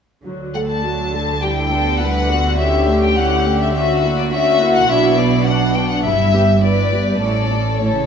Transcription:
0.25 4.86 D2 soft
0.25 4.86 D3 soft
0.25 0.53 F#3 soft
0.25 0.53 F#4 soft
0.54 0.84 A3 soft
0.54 0.84 A4 soft
0.54 0.60 F#5 soft
0.69 1.40 A5 soft
0.84 1.13 F#3 soft
0.84 1.13 F#4 soft
1.13 1.42 A3 soft
1.13 1.42 A4 soft
1.42 1.70 G3 soft
1.42 1.70 E4 soft
1.42 1.50 G4 soft
1.42 2.00 G5 soft
1.72 2.01 B3 soft
1.72 2.01 G4 soft
1.72 2.00 A4 soft
2.00 2.30 G3 soft
2.00 2.30 E4 soft
2.00 2.30 B4 soft
2.00 2.58 F#5 medium
2.29 2.58 B3 soft
2.29 2.59 F#4 soft
2.29 2.59 G4 soft
2.58 2.85 C#4 soft
2.58 2.85 E4 soft
2.58 3.74 G4 soft
2.58 3.01 E5 medium
2.87 3.16 A3 soft
2.87 3.15 C#4 soft
3.03 3.17 G5 medium
3.16 3.44 C#4 soft
3.16 3.45 E4 soft
3.16 3.60 F#5 medium
3.45 3.74 A3 soft
3.45 3.73 C#4 soft
3.61 3.73 E5 medium
3.74 4.01 C#4 soft
3.74 4.01 F#4 soft
3.74 4.30 F#4 soft
3.74 4.16 E5 medium
4.02 4.31 A#3 soft
4.02 4.31 E4 soft
4.18 4.23 D5 medium
4.32 4.61 C#4 soft
4.32 4.89 F#4 medium
4.32 4.61 F#4 soft
4.32 4.74 E5 medium
4.61 4.90 A#3 soft
4.61 4.90 E4 soft
4.76 4.90 F#5 medium
4.88 6.05 B1 medium
4.88 6.05 B2 medium
4.88 5.16 D4 soft
4.88 5.47 E4 medium
4.88 5.16 F#4 soft
4.88 5.18 E5 medium
5.17 5.47 B3 soft
5.17 5.46 D4 soft
5.17 5.46 D5 medium
5.46 6.04 D4 soft
5.46 5.74 D4 soft
5.46 5.76 F#4 soft
5.46 5.75 F#5 medium
5.75 6.05 B3 soft
5.75 6.05 D4 soft
5.75 5.90 G5 medium
5.90 6.04 F#5 medium
6.04 7.22 G1 soft
6.04 7.22 G2 soft
6.04 6.32 G3 soft
6.04 6.32 E4 soft
6.04 6.34 E4 soft
6.04 6.61 E5 medium
6.34 6.63 B3 soft
6.34 6.42 G4 soft
6.34 6.63 G4 soft
6.62 6.92 G3 soft
6.62 6.92 E4 soft
6.62 7.21 B4 soft
6.62 7.20 D5 medium
6.92 7.22 B3 soft
6.92 7.22 G4 soft
7.21 8.06 A1 soft
7.21 7.74 A2 soft
7.21 7.49 C#4 soft
7.21 7.49 E4 soft
7.21 8.06 A4 soft
7.21 7.80 D5 medium
7.51 7.81 A3 soft
7.51 7.80 C#4 soft
7.80 7.95 A2 soft
7.80 8.06 C#4 soft
7.80 8.06 E4 soft
7.80 8.06 C#5 soft
7.96 8.06 C#3 soft

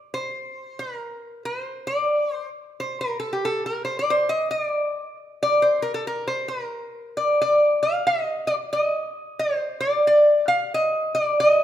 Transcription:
0.14 0.81 C5 medium
0.79 1.45 A#4 medium
1.45 1.86 C5 medium
1.87 2.33 D5 medium
2.33 2.48 C5 medium
2.80 2.99 C5 medium
3.01 3.19 A#4 medium
3.20 3.32 A4 medium
3.33 3.45 G4 medium
3.45 3.63 A4 medium
3.66 3.84 A#4 medium
3.85 3.97 C5 medium
3.99 4.11 D5 medium
4.10 4.31 C5 medium
4.29 4.50 D#5 medium
4.51 5.17 D5 medium
5.43 5.63 D5 loud
5.62 5.82 C5 medium
5.82 5.94 A#4 medium
5.94 6.07 A4 medium
6.07 6.28 A#4 medium
6.28 6.49 C5 medium
6.48 7.40 A#4 medium
7.17 7.40 D5 medium
7.42 7.82 D5 medium
7.83 8.06 F5 medium
8.07 8.47 D#5 medium
8.47 8.54 D5 medium
8.73 9.41 D#5 medium
9.39 9.80 C5 medium
9.80 10.06 D5 medium
10.07 10.48 D5 medium
10.48 10.73 F5 medium
10.74 11.14 D#5 medium
11.15 11.40 D5 medium
11.40 11.64 D#5 medium

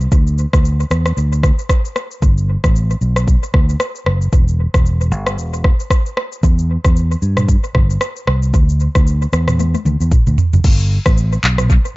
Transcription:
0.01 shaker medium
0.12 0.45 D2 loud
0.12 kick loud
0.12 shaker medium
0.27 shaker medium
0.38 shaker medium
0.53 0.83 D2 medium
0.53 kick medium
0.53 cross-stick loud
0.53 shaker medium
0.65 shaker medium
0.80 shaker soft
0.91 1.11 E2 medium
0.91 cross-stick medium
0.91 shaker medium
1.06 cross-stick medium
1.06 shaker medium
1.17 1.50 D2 loud
1.17 shaker medium
1.33 shaker medium
1.43 kick medium
1.43 cross-stick medium
1.43 shaker soft
1.59 shaker medium
1.69 kick loud
1.69 cross-stick loud
1.69 shaker medium
1.85 shaker medium
1.96 cross-stick medium
1.96 shaker medium
2.11 shaker medium
2.22 2.55 G1 loud
2.22 kick loud
2.22 shaker medium
2.38 shaker medium
2.64 2.93 A1 medium
2.64 kick medium
2.64 cross-stick medium
2.64 shaker medium
2.76 shaker medium
2.91 shaker soft
3.01 3.34 B1 medium
3.01 shaker medium
3.16 cross-stick medium
3.16 shaker medium
3.28 kick medium
3.28 shaker medium
3.43 shaker medium
3.54 3.75 D2 medium
3.54 kick loud
3.54 cross-stick medium
3.69 shaker medium
3.80 cross-stick loud
3.80 shaker medium
3.95 shaker medium
4.06 4.27 F#1 medium
4.06 cross-stick medium
4.21 shaker soft
4.33 4.66 E1 loud
4.33 kick loud
4.33 shaker medium
4.48 shaker medium
4.74 5.11 E1 medium
4.74 kick loud
4.74 cross-stick medium
4.74 shaker medium
4.86 shaker medium
5.01 shaker soft
5.11 5.38 G1 medium
5.11 shaker medium
5.27 cross-stick medium
5.27 shaker medium
5.38 5.71 E1 loud
5.38 shaker medium
5.54 shaker medium
5.64 kick medium
5.64 cross-stick medium
5.80 shaker medium
5.90 kick loud
5.90 cross-stick loud
5.90 shaker medium
6.06 shaker medium
6.17 cross-stick loud
6.32 shaker medium
6.43 6.76 E2 loud
6.43 kick loud
6.43 shaker medium
6.59 shaker medium
6.85 7.14 E2 medium
6.85 kick medium
6.85 cross-stick medium
6.85 shaker medium
6.96 shaker medium
7.11 shaker soft
7.22 7.55 G2 medium
7.22 shaker medium
7.37 cross-stick medium
7.37 mid tom medium
7.37 shaker medium
7.49 kick medium
7.49 shaker medium
7.64 shaker medium
7.75 7.96 G1 medium
7.75 kick medium
7.75 cross-stick medium
7.75 mid tom medium
7.90 shaker medium
8.01 cross-stick loud
8.01 shaker medium
8.16 shaker medium
8.27 8.54 C2 medium
8.27 cross-stick loud
8.42 shaker soft
8.54 8.87 D2 loud
8.54 kick loud
8.54 shaker medium
8.69 shaker medium
8.80 shaker medium
8.95 9.25 D2 medium
8.95 kick loud
8.95 cross-stick medium
8.95 shaker medium
9.07 shaker medium
9.22 shaker soft
9.33 9.74 E2 loud
9.33 cross-stick medium
9.33 shaker medium
9.48 cross-stick medium
9.48 mid tom medium
9.48 shaker medium
9.59 high tom medium
9.59 shaker medium
9.74 high tom medium
9.74 shaker medium
9.85 9.97 D2 medium
9.85 mid tom medium
9.85 shaker soft
10.00 10.09 E2 medium
10.00 shaker medium
10.11 kick loud
10.11 mid tom medium
10.11 shaker medium
10.27 10.36 D2 medium
10.27 mid tom medium
10.27 shaker medium
10.38 floor tom loud
10.38 shaker medium
10.53 10.62 F#1 medium
10.53 floor tom medium
10.53 shaker soft
10.64 10.97 G1 loud
10.64 kick loud
10.64 crash loud
10.64 shaker medium
10.80 shaker medium
11.06 11.36 A1 medium
11.06 kick loud
11.06 cross-stick loud
11.06 shaker medium
11.17 shaker medium
11.32 shaker soft
11.43 11.76 B1 medium
11.43 clap loud
11.43 shaker medium
11.58 cross-stick medium
11.58 mid tom medium
11.58 shaker medium
11.70 kick medium
11.70 shaker medium
11.85 shaker medium

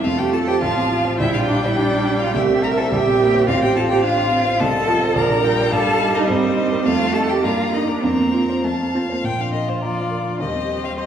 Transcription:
0.03 0.60 F2 medium
0.03 0.63 A3 medium
0.03 0.21 F4 medium
0.03 0.20 F5 loud
0.03 1.15 A5 medium
0.18 0.41 C4 soft
0.18 0.35 G4 medium
0.18 0.32 G5 medium
0.33 0.56 F4 medium
0.33 0.50 A4 loud
0.33 0.39 A5 medium
0.47 0.61 G4 loud
0.47 0.62 C5 medium
0.47 0.61 G5 medium
0.61 1.17 A1 medium
0.61 1.18 F3 medium
0.61 1.18 F4 medium
0.61 1.18 F5 medium
0.76 0.99 C4 medium
0.91 1.13 F4 medium
1.05 1.19 C5 medium
1.18 2.31 A#1 medium
1.18 2.36 G3 medium
1.18 1.36 E4 medium
1.18 1.33 E5 medium
1.18 2.36 G5 medium
1.33 1.57 D4 soft
1.33 1.50 F4 medium
1.33 1.39 F5 medium
1.47 1.63 D4 medium
1.47 1.71 G4 medium
1.47 1.62 D5 medium
1.62 1.78 E4 medium
1.62 1.85 D5 medium
1.62 1.68 E5 medium
1.76 2.20 D4 medium
1.76 2.21 D5 medium
1.76 2.00 G5 medium
1.90 2.14 D5 medium
2.05 2.29 G5 medium
2.19 2.34 F4 medium
2.19 2.34 D5 medium
2.19 2.33 F5 medium
2.33 2.90 C2 medium
2.33 2.90 A3 medium
2.33 2.65 G4 medium
2.33 3.48 E5 medium
2.33 2.41 G5 medium
2.48 2.71 C4 medium
2.63 2.86 E4 medium
2.63 2.79 A#4 loud
2.63 2.69 A#5 medium
2.77 2.91 A4 medium
2.77 2.92 C5 medium
2.77 2.91 A5 medium
2.91 3.46 A#1 medium
2.91 2.99 G3 medium
2.91 3.49 G4 loud
2.91 3.47 G5 medium
3.06 3.28 C4 medium
3.20 3.49 A#3 medium
3.20 3.42 E4 medium
3.34 3.48 C5 medium
3.47 4.56 A1 medium
3.47 4.05 C4 medium
3.47 3.64 F4 medium
3.47 4.58 F5 medium
3.47 3.62 F5 medium
3.62 3.84 C4 medium
3.62 3.75 G4 medium
3.62 3.76 G5 medium
3.76 3.98 F4 medium
3.76 3.81 A4 loud
3.76 3.82 A5 medium
3.90 4.03 G4 medium
3.90 4.12 C5 medium
3.90 4.03 G5 medium
4.03 4.31 D4 medium
4.03 4.62 F4 medium
4.03 4.26 F5 medium
4.03 4.62 F5 medium
4.18 4.40 C6 medium
4.31 4.40 C4 medium
4.31 4.54 F5 medium
4.46 4.60 C5 medium
4.59 5.14 C2 medium
4.59 4.68 A3 medium
4.59 5.18 A4 loud
4.59 5.17 D#5 medium
4.59 5.15 A5 loud
4.74 4.96 C4 medium
4.87 4.95 F3 medium
4.87 5.10 F4 medium
5.02 5.16 C5 medium
5.15 5.70 A#1 medium
5.15 5.42 F3 medium
5.15 5.72 A#4 loud
5.15 5.45 D5 medium
5.15 5.74 A#5 medium
5.30 5.52 D4 medium
5.43 6.82 G3 loud
5.43 5.66 F4 medium
5.43 5.73 G5 medium
5.58 5.72 D5 medium
5.71 6.27 G2 medium
5.71 6.14 A4 loud
5.71 6.30 F5 medium
5.71 6.16 A5 loud
5.86 6.09 A#3 soft
6.00 6.23 D#4 medium
6.15 6.28 D#4 medium
6.15 6.29 A#4 medium
6.15 6.30 D#5 medium
6.28 6.84 G2 medium
6.28 6.87 C4 medium
6.28 6.87 C5 medium
6.28 6.85 D#5 medium
6.43 6.66 A#3 medium
6.57 6.80 D#4 medium
6.71 6.86 A#4 medium
6.85 7.42 F2 medium
6.85 7.43 A3 medium
6.85 7.16 F4 loud
6.85 7.14 F5 medium
6.85 7.45 A5 medium
7.00 7.23 A3 soft
7.14 7.38 D#4 medium
7.14 7.32 A4 loud
7.14 7.20 A5 medium
7.28 7.45 G4 medium
7.28 7.44 A4 medium
7.28 7.34 G5 medium
7.43 8.02 G2 medium
7.43 8.05 A#3 medium
7.43 7.75 F4 medium
7.43 7.72 F5 medium
7.43 8.03 A#5 medium
7.59 7.83 A#3 soft
7.73 7.97 D4 soft
7.73 7.89 D#4 medium
7.73 7.90 D#5 medium
7.88 8.05 D4 medium
7.88 8.03 A#4 medium
7.88 8.05 D5 medium
8.03 8.62 F2 medium
8.03 8.64 A#3 medium
8.03 8.58 C4 medium
8.03 8.64 A#4 medium
8.03 8.65 A#5 medium
8.18 8.42 C4 soft
8.34 8.58 F4 soft
8.49 8.64 C5 medium
8.63 9.22 F2 medium
8.63 8.72 A3 medium
8.63 9.26 F5 medium
8.63 9.03 A5 medium
8.79 9.03 C4 soft
8.95 9.01 C4 medium
8.95 9.18 F4 soft
9.10 9.16 A#3 medium
9.10 9.24 C5 soft
9.24 10.37 A#2 medium
9.24 10.41 F3 soft
9.24 10.41 F4 medium
9.24 9.42 G5 medium
9.39 9.62 D4 soft
9.39 9.53 F5 medium
9.53 9.76 A#4 soft
9.53 9.71 D#5 medium
9.68 9.82 C5 medium
9.68 9.91 F5 soft
9.82 10.42 F4 medium
9.82 10.39 D5 medium
9.82 10.05 A#5 soft
9.96 10.20 D5 soft
10.11 10.34 A#4 soft
10.25 10.40 D4 soft
10.40 11.06 D#2 medium
10.40 11.06 G3 soft
10.40 11.06 C4 soft
10.40 10.99 G4 medium
10.40 10.86 D#5 medium
10.55 10.77 C4 soft
10.69 10.92 C5 soft
10.84 10.97 F5 medium
10.84 11.06 G5 soft
10.98 11.06 C5 medium
10.98 11.06 D#5 medium
10.98 11.06 C6 soft

